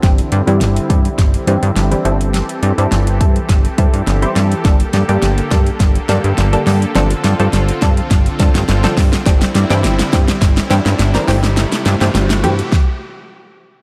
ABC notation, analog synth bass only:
X:1
M:4/4
L:1/16
Q:1/4=104
K:Aphr
V:1 name="Analog synth bass" clef=bass
G,,,2 G,, G,, G,,,2 G,,2 G,,,2 G,, G,, G,,,2 G,,,2- | G,,,2 G,, G,, G,,,2 G,,2 G,,,2 G,, G,, G,,,2 G,,2 | G,,,2 G,, G,, G,,,2 G,,2 G,,,2 G,, G,, G,,,2 G,,2 | G,,,2 G,, G,, G,,,2 G,,2 G,,,2 G,, G,, G,,,2 G,,2 |
G,,,2 G,, G,, G,,,2 G,,2 G,,,2 G,, G,, G,,,2 G,,,2- | G,,,2 G,, G,, G,,,2 G,,2 z8 |]